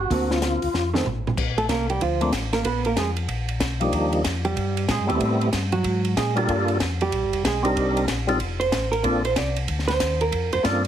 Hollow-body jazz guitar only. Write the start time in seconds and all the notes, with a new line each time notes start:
0.10 D3 A#3 C4 F#4
0.94 D#3 A3 C4
1.58 A3 A4
1.69 A#3 A#4
1.90 G3 G4
2.02 F3 F4
2.53 A#3 A#4
2.65 B3 B4
2.86 A#3 A#4
2.98 G#3 G#4
4.45 G3 G4
4.91 G#3 G#4
5.09 G3 G4
5.72 F#3 F#4
6.17 G#3 G#4
6.38 G3 G4
7.02 G3 G4
7.46 G#3 G#4
7.66 G3 G4
8.60 C5
8.92 A#4
9.25 C5
9.37 D5
9.88 C5
10.21 A#4
10.53 C5
10.66 D5